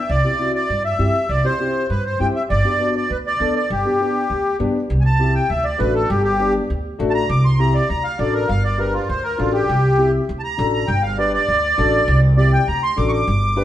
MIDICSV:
0, 0, Header, 1, 4, 480
1, 0, Start_track
1, 0, Key_signature, 1, "major"
1, 0, Tempo, 299401
1, 159, Time_signature, 4, 2, 24, 8
1, 21869, End_track
2, 0, Start_track
2, 0, Title_t, "Accordion"
2, 0, Program_c, 0, 21
2, 0, Note_on_c, 0, 76, 80
2, 157, Note_on_c, 0, 74, 95
2, 162, Note_off_c, 0, 76, 0
2, 829, Note_off_c, 0, 74, 0
2, 883, Note_on_c, 0, 74, 88
2, 1330, Note_off_c, 0, 74, 0
2, 1363, Note_on_c, 0, 76, 92
2, 2084, Note_on_c, 0, 74, 86
2, 2106, Note_off_c, 0, 76, 0
2, 2325, Note_on_c, 0, 72, 85
2, 2332, Note_off_c, 0, 74, 0
2, 2996, Note_off_c, 0, 72, 0
2, 3052, Note_on_c, 0, 71, 85
2, 3273, Note_off_c, 0, 71, 0
2, 3294, Note_on_c, 0, 72, 79
2, 3515, Note_off_c, 0, 72, 0
2, 3531, Note_on_c, 0, 79, 90
2, 3639, Note_off_c, 0, 79, 0
2, 3778, Note_on_c, 0, 76, 82
2, 3884, Note_off_c, 0, 76, 0
2, 4011, Note_on_c, 0, 74, 96
2, 4718, Note_off_c, 0, 74, 0
2, 4742, Note_on_c, 0, 74, 77
2, 4984, Note_off_c, 0, 74, 0
2, 4988, Note_on_c, 0, 71, 82
2, 5093, Note_off_c, 0, 71, 0
2, 5233, Note_on_c, 0, 74, 91
2, 5679, Note_off_c, 0, 74, 0
2, 5703, Note_on_c, 0, 74, 80
2, 5922, Note_off_c, 0, 74, 0
2, 5952, Note_on_c, 0, 67, 76
2, 7322, Note_off_c, 0, 67, 0
2, 8030, Note_on_c, 0, 80, 59
2, 8067, Note_off_c, 0, 80, 0
2, 8103, Note_on_c, 0, 81, 84
2, 8567, Note_off_c, 0, 81, 0
2, 8583, Note_on_c, 0, 79, 78
2, 8814, Note_off_c, 0, 79, 0
2, 8814, Note_on_c, 0, 76, 88
2, 9048, Note_on_c, 0, 74, 78
2, 9050, Note_off_c, 0, 76, 0
2, 9285, Note_on_c, 0, 71, 81
2, 9287, Note_off_c, 0, 74, 0
2, 9525, Note_off_c, 0, 71, 0
2, 9535, Note_on_c, 0, 69, 83
2, 9767, Note_on_c, 0, 67, 83
2, 9770, Note_off_c, 0, 69, 0
2, 9977, Note_off_c, 0, 67, 0
2, 10001, Note_on_c, 0, 67, 98
2, 10476, Note_off_c, 0, 67, 0
2, 11377, Note_on_c, 0, 81, 67
2, 11417, Note_off_c, 0, 81, 0
2, 11455, Note_on_c, 0, 82, 104
2, 11690, Note_off_c, 0, 82, 0
2, 11699, Note_on_c, 0, 86, 93
2, 11932, Note_off_c, 0, 86, 0
2, 11940, Note_on_c, 0, 84, 93
2, 12172, Note_off_c, 0, 84, 0
2, 12174, Note_on_c, 0, 82, 90
2, 12409, Note_off_c, 0, 82, 0
2, 12415, Note_on_c, 0, 74, 91
2, 12648, Note_on_c, 0, 82, 88
2, 12649, Note_off_c, 0, 74, 0
2, 12886, Note_off_c, 0, 82, 0
2, 12886, Note_on_c, 0, 77, 88
2, 13125, Note_off_c, 0, 77, 0
2, 13138, Note_on_c, 0, 74, 77
2, 13366, Note_on_c, 0, 70, 86
2, 13371, Note_off_c, 0, 74, 0
2, 13604, Note_off_c, 0, 70, 0
2, 13607, Note_on_c, 0, 77, 88
2, 13845, Note_off_c, 0, 77, 0
2, 13850, Note_on_c, 0, 74, 84
2, 14086, Note_off_c, 0, 74, 0
2, 14091, Note_on_c, 0, 70, 77
2, 14326, Note_on_c, 0, 65, 80
2, 14327, Note_off_c, 0, 70, 0
2, 14564, Note_off_c, 0, 65, 0
2, 14568, Note_on_c, 0, 72, 82
2, 14802, Note_on_c, 0, 70, 94
2, 14805, Note_off_c, 0, 72, 0
2, 15041, Note_off_c, 0, 70, 0
2, 15042, Note_on_c, 0, 65, 82
2, 15281, Note_off_c, 0, 65, 0
2, 15283, Note_on_c, 0, 67, 95
2, 16218, Note_off_c, 0, 67, 0
2, 16661, Note_on_c, 0, 81, 68
2, 16699, Note_off_c, 0, 81, 0
2, 16735, Note_on_c, 0, 82, 101
2, 17183, Note_off_c, 0, 82, 0
2, 17207, Note_on_c, 0, 82, 93
2, 17433, Note_on_c, 0, 79, 96
2, 17442, Note_off_c, 0, 82, 0
2, 17674, Note_off_c, 0, 79, 0
2, 17674, Note_on_c, 0, 77, 89
2, 17914, Note_off_c, 0, 77, 0
2, 17926, Note_on_c, 0, 74, 89
2, 18150, Note_off_c, 0, 74, 0
2, 18174, Note_on_c, 0, 74, 103
2, 19566, Note_off_c, 0, 74, 0
2, 19833, Note_on_c, 0, 74, 101
2, 20071, Note_off_c, 0, 74, 0
2, 20086, Note_on_c, 0, 79, 95
2, 20318, Note_off_c, 0, 79, 0
2, 20322, Note_on_c, 0, 82, 93
2, 20555, Note_off_c, 0, 82, 0
2, 20569, Note_on_c, 0, 84, 103
2, 20799, Note_off_c, 0, 84, 0
2, 20805, Note_on_c, 0, 86, 92
2, 20977, Note_on_c, 0, 85, 69
2, 21013, Note_off_c, 0, 85, 0
2, 21025, Note_off_c, 0, 86, 0
2, 21049, Note_on_c, 0, 86, 99
2, 21869, Note_off_c, 0, 86, 0
2, 21869, End_track
3, 0, Start_track
3, 0, Title_t, "Upright piano"
3, 0, Program_c, 1, 0
3, 387, Note_on_c, 1, 60, 58
3, 397, Note_on_c, 1, 64, 52
3, 397, Note_on_c, 1, 67, 65
3, 477, Note_off_c, 1, 60, 0
3, 482, Note_off_c, 1, 64, 0
3, 482, Note_off_c, 1, 67, 0
3, 624, Note_on_c, 1, 60, 65
3, 630, Note_on_c, 1, 64, 61
3, 639, Note_on_c, 1, 66, 73
3, 968, Note_off_c, 1, 60, 0
3, 972, Note_off_c, 1, 64, 0
3, 976, Note_off_c, 1, 66, 0
3, 1579, Note_on_c, 1, 60, 72
3, 1581, Note_on_c, 1, 64, 65
3, 1591, Note_on_c, 1, 67, 81
3, 1843, Note_off_c, 1, 60, 0
3, 1844, Note_off_c, 1, 64, 0
3, 1849, Note_off_c, 1, 67, 0
3, 2308, Note_on_c, 1, 60, 62
3, 2311, Note_on_c, 1, 64, 55
3, 2316, Note_on_c, 1, 67, 70
3, 2401, Note_off_c, 1, 60, 0
3, 2402, Note_off_c, 1, 64, 0
3, 2404, Note_off_c, 1, 67, 0
3, 2551, Note_on_c, 1, 60, 66
3, 2560, Note_on_c, 1, 64, 60
3, 2563, Note_on_c, 1, 67, 72
3, 2895, Note_off_c, 1, 60, 0
3, 2900, Note_off_c, 1, 64, 0
3, 2901, Note_off_c, 1, 67, 0
3, 3517, Note_on_c, 1, 60, 74
3, 3525, Note_on_c, 1, 64, 66
3, 3534, Note_on_c, 1, 67, 79
3, 3775, Note_off_c, 1, 60, 0
3, 3779, Note_off_c, 1, 64, 0
3, 3783, Note_off_c, 1, 67, 0
3, 4234, Note_on_c, 1, 59, 58
3, 4242, Note_on_c, 1, 62, 55
3, 4249, Note_on_c, 1, 67, 65
3, 4326, Note_off_c, 1, 59, 0
3, 4330, Note_off_c, 1, 62, 0
3, 4334, Note_off_c, 1, 67, 0
3, 4475, Note_on_c, 1, 59, 66
3, 4486, Note_on_c, 1, 62, 61
3, 4492, Note_on_c, 1, 66, 73
3, 4820, Note_off_c, 1, 59, 0
3, 4825, Note_off_c, 1, 62, 0
3, 4828, Note_off_c, 1, 66, 0
3, 5445, Note_on_c, 1, 59, 75
3, 5453, Note_on_c, 1, 62, 65
3, 5457, Note_on_c, 1, 69, 82
3, 5701, Note_off_c, 1, 59, 0
3, 5705, Note_off_c, 1, 62, 0
3, 5707, Note_off_c, 1, 69, 0
3, 6172, Note_on_c, 1, 59, 61
3, 6176, Note_on_c, 1, 62, 55
3, 6182, Note_on_c, 1, 67, 67
3, 6257, Note_off_c, 1, 59, 0
3, 6260, Note_off_c, 1, 62, 0
3, 6262, Note_off_c, 1, 67, 0
3, 6409, Note_on_c, 1, 59, 65
3, 6415, Note_on_c, 1, 62, 57
3, 6427, Note_on_c, 1, 67, 71
3, 6749, Note_off_c, 1, 59, 0
3, 6752, Note_off_c, 1, 62, 0
3, 6758, Note_off_c, 1, 67, 0
3, 7364, Note_on_c, 1, 59, 87
3, 7375, Note_on_c, 1, 62, 76
3, 7383, Note_on_c, 1, 67, 86
3, 7623, Note_off_c, 1, 59, 0
3, 7629, Note_off_c, 1, 62, 0
3, 7633, Note_off_c, 1, 67, 0
3, 8323, Note_on_c, 1, 60, 70
3, 8329, Note_on_c, 1, 64, 62
3, 8333, Note_on_c, 1, 67, 79
3, 8667, Note_off_c, 1, 60, 0
3, 8670, Note_off_c, 1, 64, 0
3, 8672, Note_off_c, 1, 67, 0
3, 9273, Note_on_c, 1, 57, 77
3, 9282, Note_on_c, 1, 62, 67
3, 9289, Note_on_c, 1, 66, 88
3, 9622, Note_off_c, 1, 57, 0
3, 9627, Note_off_c, 1, 62, 0
3, 9630, Note_off_c, 1, 66, 0
3, 10240, Note_on_c, 1, 59, 71
3, 10249, Note_on_c, 1, 62, 68
3, 10254, Note_on_c, 1, 67, 79
3, 10586, Note_off_c, 1, 59, 0
3, 10590, Note_off_c, 1, 62, 0
3, 10593, Note_off_c, 1, 67, 0
3, 11203, Note_on_c, 1, 57, 90
3, 11209, Note_on_c, 1, 62, 86
3, 11213, Note_on_c, 1, 66, 103
3, 11547, Note_off_c, 1, 57, 0
3, 11550, Note_off_c, 1, 62, 0
3, 11552, Note_off_c, 1, 66, 0
3, 12164, Note_on_c, 1, 60, 73
3, 12175, Note_on_c, 1, 64, 66
3, 12180, Note_on_c, 1, 67, 78
3, 12508, Note_off_c, 1, 60, 0
3, 12513, Note_off_c, 1, 64, 0
3, 12516, Note_off_c, 1, 67, 0
3, 13128, Note_on_c, 1, 62, 81
3, 13138, Note_on_c, 1, 66, 71
3, 13144, Note_on_c, 1, 69, 84
3, 13469, Note_off_c, 1, 62, 0
3, 13474, Note_off_c, 1, 66, 0
3, 13477, Note_off_c, 1, 69, 0
3, 14075, Note_on_c, 1, 62, 67
3, 14080, Note_on_c, 1, 67, 65
3, 14090, Note_on_c, 1, 71, 79
3, 14422, Note_off_c, 1, 62, 0
3, 14424, Note_off_c, 1, 67, 0
3, 14429, Note_off_c, 1, 71, 0
3, 15043, Note_on_c, 1, 62, 78
3, 15056, Note_on_c, 1, 66, 69
3, 15058, Note_on_c, 1, 69, 85
3, 15385, Note_off_c, 1, 62, 0
3, 15391, Note_off_c, 1, 66, 0
3, 15392, Note_off_c, 1, 69, 0
3, 15997, Note_on_c, 1, 60, 80
3, 16004, Note_on_c, 1, 64, 81
3, 16006, Note_on_c, 1, 67, 94
3, 16341, Note_off_c, 1, 60, 0
3, 16344, Note_off_c, 1, 64, 0
3, 16346, Note_off_c, 1, 67, 0
3, 16955, Note_on_c, 1, 62, 76
3, 16963, Note_on_c, 1, 66, 69
3, 16975, Note_on_c, 1, 69, 89
3, 17299, Note_off_c, 1, 62, 0
3, 17303, Note_off_c, 1, 66, 0
3, 17309, Note_off_c, 1, 69, 0
3, 17924, Note_on_c, 1, 62, 72
3, 17928, Note_on_c, 1, 67, 67
3, 17934, Note_on_c, 1, 71, 83
3, 18263, Note_off_c, 1, 62, 0
3, 18265, Note_off_c, 1, 67, 0
3, 18267, Note_off_c, 1, 71, 0
3, 18879, Note_on_c, 1, 62, 96
3, 18886, Note_on_c, 1, 66, 86
3, 18892, Note_on_c, 1, 69, 98
3, 19219, Note_off_c, 1, 62, 0
3, 19222, Note_off_c, 1, 66, 0
3, 19225, Note_off_c, 1, 69, 0
3, 19829, Note_on_c, 1, 60, 75
3, 19834, Note_on_c, 1, 64, 65
3, 19840, Note_on_c, 1, 67, 82
3, 20172, Note_off_c, 1, 60, 0
3, 20175, Note_off_c, 1, 64, 0
3, 20178, Note_off_c, 1, 67, 0
3, 20782, Note_on_c, 1, 62, 83
3, 20785, Note_on_c, 1, 66, 73
3, 20792, Note_on_c, 1, 69, 86
3, 21128, Note_off_c, 1, 62, 0
3, 21129, Note_off_c, 1, 66, 0
3, 21133, Note_off_c, 1, 69, 0
3, 21744, Note_on_c, 1, 62, 92
3, 21746, Note_on_c, 1, 67, 77
3, 21757, Note_on_c, 1, 71, 102
3, 21869, Note_off_c, 1, 62, 0
3, 21869, Note_off_c, 1, 67, 0
3, 21869, Note_off_c, 1, 71, 0
3, 21869, End_track
4, 0, Start_track
4, 0, Title_t, "Upright bass"
4, 0, Program_c, 2, 32
4, 153, Note_on_c, 2, 36, 88
4, 347, Note_off_c, 2, 36, 0
4, 1117, Note_on_c, 2, 43, 81
4, 1504, Note_off_c, 2, 43, 0
4, 1588, Note_on_c, 2, 43, 81
4, 1786, Note_off_c, 2, 43, 0
4, 2073, Note_on_c, 2, 36, 88
4, 2270, Note_off_c, 2, 36, 0
4, 3044, Note_on_c, 2, 43, 81
4, 3430, Note_off_c, 2, 43, 0
4, 3532, Note_on_c, 2, 43, 79
4, 3723, Note_off_c, 2, 43, 0
4, 4010, Note_on_c, 2, 31, 89
4, 4202, Note_off_c, 2, 31, 0
4, 4974, Note_on_c, 2, 38, 78
4, 5358, Note_off_c, 2, 38, 0
4, 5454, Note_on_c, 2, 38, 82
4, 5646, Note_off_c, 2, 38, 0
4, 5937, Note_on_c, 2, 31, 93
4, 6128, Note_off_c, 2, 31, 0
4, 6893, Note_on_c, 2, 38, 77
4, 7279, Note_off_c, 2, 38, 0
4, 7372, Note_on_c, 2, 43, 78
4, 7566, Note_off_c, 2, 43, 0
4, 7856, Note_on_c, 2, 36, 93
4, 8626, Note_off_c, 2, 36, 0
4, 8816, Note_on_c, 2, 38, 89
4, 9202, Note_off_c, 2, 38, 0
4, 9297, Note_on_c, 2, 33, 93
4, 9682, Note_off_c, 2, 33, 0
4, 9780, Note_on_c, 2, 31, 97
4, 10548, Note_off_c, 2, 31, 0
4, 10743, Note_on_c, 2, 38, 87
4, 11126, Note_off_c, 2, 38, 0
4, 11218, Note_on_c, 2, 33, 99
4, 11603, Note_off_c, 2, 33, 0
4, 11695, Note_on_c, 2, 36, 104
4, 12464, Note_off_c, 2, 36, 0
4, 12662, Note_on_c, 2, 38, 92
4, 13044, Note_off_c, 2, 38, 0
4, 13132, Note_on_c, 2, 33, 96
4, 13519, Note_off_c, 2, 33, 0
4, 13615, Note_on_c, 2, 31, 97
4, 14383, Note_off_c, 2, 31, 0
4, 14579, Note_on_c, 2, 38, 90
4, 14962, Note_off_c, 2, 38, 0
4, 15059, Note_on_c, 2, 33, 96
4, 15441, Note_off_c, 2, 33, 0
4, 15539, Note_on_c, 2, 36, 99
4, 16304, Note_off_c, 2, 36, 0
4, 16498, Note_on_c, 2, 38, 89
4, 16879, Note_off_c, 2, 38, 0
4, 16972, Note_on_c, 2, 33, 98
4, 17355, Note_off_c, 2, 33, 0
4, 17447, Note_on_c, 2, 31, 104
4, 18215, Note_off_c, 2, 31, 0
4, 18412, Note_on_c, 2, 38, 90
4, 18794, Note_off_c, 2, 38, 0
4, 18891, Note_on_c, 2, 33, 103
4, 19273, Note_off_c, 2, 33, 0
4, 19363, Note_on_c, 2, 36, 102
4, 20131, Note_off_c, 2, 36, 0
4, 20324, Note_on_c, 2, 38, 87
4, 20707, Note_off_c, 2, 38, 0
4, 20802, Note_on_c, 2, 33, 105
4, 21186, Note_off_c, 2, 33, 0
4, 21282, Note_on_c, 2, 31, 98
4, 21869, Note_off_c, 2, 31, 0
4, 21869, End_track
0, 0, End_of_file